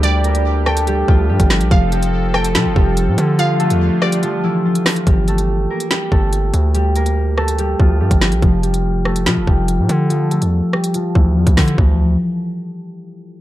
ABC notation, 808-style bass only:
X:1
M:4/4
L:1/16
Q:1/4=143
K:Gdor
V:1 name="808-style bass" clef=bass
D,,8- D,,2 D,,2 G,, G,,,2 B,,, | F,,,8 C, F,,, F,,,3 A,, D,2- | D,3 E,,2 z8 z3 | G,,,6 z4 G,,,4 D,,2- |
D,,8- D,,2 D,,2 G,, G,,,2 B,,, | F,,,8 C, F,,, F,,,3 A,, D,2- | D,3 E,,2 z4 z D,,2 E,, D,, D,2 | D,,4 z12 |]